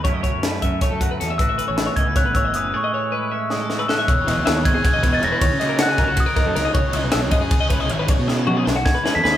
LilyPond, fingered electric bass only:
\new Staff \with { instrumentName = "Fingered electric bass" } { \clef bass \time 7/8 \key a \lydian \tempo 4 = 157 fis,8 r16 fis,8. fis,8 r16 fis,8. e,8 | a,,8 r16 a,,8 r16 cis,8. a,,8. fis,,8 | r2. r8 | e,,8 e,,16 dis,16 dis,8 gis,,8 r16 e,,8. e,,16 r16 |
dis,16 cis4~ cis16 cis,8 r8. fis,16 cis,16 r16 | cis,8 cis,16 b,,16 b,,8 fis,8 r16 cis,8. gis,,8 | r16 b,4~ b,16 b,,8 r8. e,16 dis,16 r16 | }